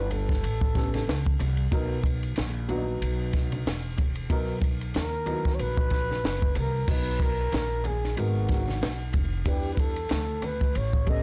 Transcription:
Already playing: G1 B4
0.10 A4, ride, low conga, shaker
0.29 kick, snare, ride, shaker
0.43 A1, ride, shaker
0.61 kick, shaker
0.75 G3 B3 C#4 A4, kick, snare, ride, high conga, shaker
0.94 snare, ride, high conga, shaker
1.07 C#2, snare, hi-hat pedal, ride, shaker
1.26 kick, shaker
1.39 C2, ride, low conga, shaker
1.57 ride, shaker
1.72 B1 F#3 B3 D#4 A#4, kick, ride, shaker
1.91 shaker
2.04 kick, ride, shaker
2.23 ride, shaker
2.36 A#1, snare, hi-hat pedal, ride, high conga, low conga, shaker
2.57 shaker
2.68 F#3 B3 D4 F#4, ride, low conga, shaker
2.76 D#4
2.88 shaker
3.01 B1, ride, shaker
3.21 shaker
3.33 kick, snare, ride, high conga, shaker
3.52 ride, high conga, shaker
3.66 E1, snare, hi-hat pedal, ride, shaker
3.85 shaker
3.98 kick, ride, low conga, shaker
4.15 ride, shaker
4.30 B1 F#3 B3 D#4 A#4, kick, ride, shaker
4.49 shaker
4.62 kick, ride, shaker
4.81 ride, shaker
4.94 D#2 A#4, snare, hi-hat pedal, ride, high conga, low conga, shaker
5.14 shaker
5.26 F#3 B3 D#4 E4, ride, low conga, shaker
5.34 F#4
5.45 kick, snare, shaker
5.54 C#5, shaker
5.59 A#1 B4, ride
5.77 kick, shaker
5.90 kick, snare, ride, high conga, shaker
6.10 snare, high conga, shaker
6.24 F#1, snare, hi-hat pedal, ride, shaker
6.42 kick, shaker
6.55 C2 A#4, ride, low conga, shaker
6.75 shaker
6.88 B1 F#3 B3 D#4 B4, kick, crash, shaker
7.06 shaker
7.19 A#4, kick, ride, shaker
7.38 shaker
7.52 A#1, snare, hi-hat pedal, ride, high conga, low conga, shaker
7.71 shaker
7.84 G#4, ride, low conga, shaker
8.03 snare, ride, shaker
8.16 G#1 G#3 B3 F#4 A#4, ride, shaker
8.37 shaker
8.49 kick, snare, ride, high conga, shaker
8.68 snare, high conga, shaker
8.81 B1, snare, hi-hat pedal, ride, shaker
9.00 shaker
9.13 F1, kick, ride, low conga, shaker
9.33 shaker
9.45 E2 G3 D4 E4 G4 B4, kick, ride, shaker
9.64 shaker
9.73 B4
9.77 A4, kick, ride, shaker
9.96 ride, shaker
10.09 D2, snare, hi-hat pedal, ride, high conga, low conga, shaker
10.29 shaker
10.42 B4, ride, low conga, shaker
10.60 kick, ride, shaker
10.74 A1 C#5, ride, shaker
10.93 kick, shaker
11.06 G3 B3 C#4 A4 D#5, kick, ride, high conga, shaker

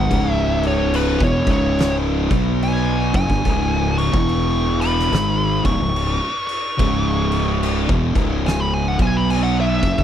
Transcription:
Already playing: F#5
0.09 C#1 C#2 G#2 C#3, kick, crash
0.33 E5
0.63 crash
0.67 C#5
0.94 B4, crash
1.20 E1 E2 B2 C#5, kick
1.47 C#1 C#2 G#2 C#3, kick, crash
1.52 C#5
1.79 snare, crash
2.30 B1 B2 F#3 B3, kick, crash
2.62 G#5, crash
3.13 F#1 F#2 C#3 G#5, kick, crash
3.29 G1 G2 D3, kick
3.45 C#1 C#2 G#2 C#3, kick, crash
3.98 C#6, crash
4.13 E1 E2 B2 E3, kick
4.29 crash
4.81 B5, crash
4.99 snare
5.12 G#1 G#2 D#3 G#3, snare, crash
5.64 C#1 C#2 G#2 C#6, kick, crash
5.79 C#1 C#2 G#2
5.96 crash
6.47 C#6, crash
6.78 C#1 C#2 G#2 C#3, kick, crash
7.32 crash
7.63 crash
7.89 E1 E2 B2, kick
8.14 C#1 C#2 G#2 C#3, kick, crash
8.46 G#5, snare, crash
8.60 B5
8.74 G#5
8.88 F#5
8.98 B1 B2 F#3 B3, kick, crash
9.02 G#5
9.17 B5
9.30 G#5, crash
9.44 F#5
9.61 E5
9.82 F#1 F#2 C#3, kick, crash
9.98 G1 G2 D3, kick

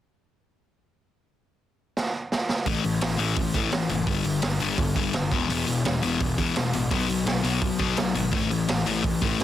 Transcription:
1.97 snare
2.32 snare
2.49 snare
2.66 A1 A2 E3 A3, kick, open hi-hat
2.84 A1 A2 E3, open hi-hat
3.01 A1 A2 E3, snare, open hi-hat
3.17 A1 A2 E3 A3, open hi-hat
3.36 A1 A2 E3, kick, open hi-hat
3.54 A1 A2 E3 A3, kick, open hi-hat
3.72 A1 A2 E3, snare, open hi-hat
3.89 F#1 A2 E3, open hi-hat
4.07 G1 G2 D3 G3, kick, open hi-hat
4.24 G1 G2 D3, open hi-hat
4.42 G1 G2 D3, snare, open hi-hat
4.60 G1 G2 D3 G3, open hi-hat
4.78 G1 G2 D3, kick, open hi-hat
4.96 G1 G2 D3 G3, kick, open hi-hat
5.13 F#1 G2 D3, snare, open hi-hat
5.32 E1 E2 B2 E3, kick, open hi-hat
5.49 E1 E2 B2 E3, open hi-hat
5.67 E1 E2 B2, open hi-hat
5.84 E1 E2 B2, snare, open hi-hat
6.02 E1 E2 B2 E3, open hi-hat
6.20 E1 E2 B2, kick, open hi-hat
6.38 E1 E2 B2 E3, kick, open hi-hat
6.56 E1 E2 B2, snare, open hi-hat
6.73 A1 E2 B2, open hi-hat
6.91 B1 B2 F#3 B3, kick, open hi-hat
7.08 B1 B2 F#3, open hi-hat
7.26 B1 B2 F#3, snare, open hi-hat
7.43 B1 B2 F#3 B3, open hi-hat
7.61 B1 B2 F#3, kick, open hi-hat
7.79 B1 B2 F#3 B3, kick, open hi-hat
7.97 B1 B2 F#3, snare, open hi-hat
8.15 G#1 B2 F#3, open hi-hat
8.32 A1 A2 E3 A3, kick, open hi-hat
8.50 A1 A2 E3, open hi-hat
8.68 A1 A2 E3, snare, open hi-hat
8.85 A1 A2 E3 A3, open hi-hat
9.03 A1 A2 E3, kick, open hi-hat
9.21 A1 A2 E3 A3, kick, open hi-hat
9.39 A1 A2 E3, open hi-hat

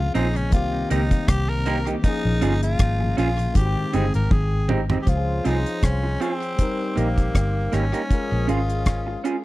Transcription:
Already playing: F3 C4 C#4 G#4
0.00 F4
0.14 A#1 C4 C#4 D#4 F4 G#4, closed hi-hat
0.36 C#3 G#3 C#4, closed hi-hat
0.50 C2 D#3 A#3 F4, kick, closed hi-hat
0.54 C4 G4
0.74 C3 G3
0.90 C#2 A#3 C4 D#4 G4, closed hi-hat
1.11 C3 G3, kick, closed hi-hat
1.28 C2 G4, kick, cross-stick, closed hi-hat
1.49 C3 G3 A#4
1.66 A#3 C4 D#4 G4, closed hi-hat
1.87 C3 G3 A#3 D#4 G4, closed hi-hat
2.02 F3 A#3 C#4 D#4, kick, closed hi-hat
2.08 G#4
2.25 A#1 A#2 F3
2.41 G1 A#3 C#4 F4 G#4, closed hi-hat
2.63 F4, closed hi-hat
2.79 G#1, kick, cross-stick, closed hi-hat
3.00 A#2 F3, muted clean electric guitar stroke
3.17 A#1 A#3 C#4 F4 G#4, closed hi-hat
3.39 A#2 F3, closed hi-hat
3.54 G#1 D#3 G#3 C4 G4, kick, closed hi-hat
3.60 F#4
3.66 G5
3.77 G#2 D#3
3.93 G1 G#3 C4 D#4 G4 G#4, closed hi-hat
4.14 G#1 G#2 D#3 A#4, closed hi-hat
4.31 G#1 G#4, kick, high tom
4.52 G#2 D#3
4.68 G#3 C4 D#4 G4, mid tom
4.90 G#2 D#3 C4 D#4 G4, floor tom
5.02 F3 G4
5.06 C#2 C4 C#4 F4 G4 C5, kick, closed hi-hat
5.17 G#4
5.45 C2 C4 D#4 F4 G#4, closed hi-hat
5.66 closed hi-hat
5.83 C2 C#4, kick, cross-stick, closed hi-hat
6.03 muted clean electric guitar stroke
6.20 C4 F4 G#4, closed hi-hat
6.43 closed hi-hat
6.56 D#3 G3 C4 G4 C5, kick, closed hi-hat
6.60 D#4 A#4
6.96 A#1 A#3 D#4 G4, closed hi-hat
7.18 kick, closed hi-hat
7.35 G1, kick, cross-stick, closed hi-hat
7.72 G#1 A#3 C#4 D#4 G4, cross-stick, closed hi-hat
7.93 A#3 D#4 G4, closed hi-hat
8.08 F3 G#3 C#4 F4 G#4, kick, closed hi-hat
8.14 A#4
8.32 A#1
8.47 G#1 C#4 F4 G#4, closed hi-hat
8.70 closed hi-hat
8.86 kick, cross-stick, closed hi-hat
9.07 muted clean electric guitar stroke
9.24 C#4 F4 G#4, closed hi-hat

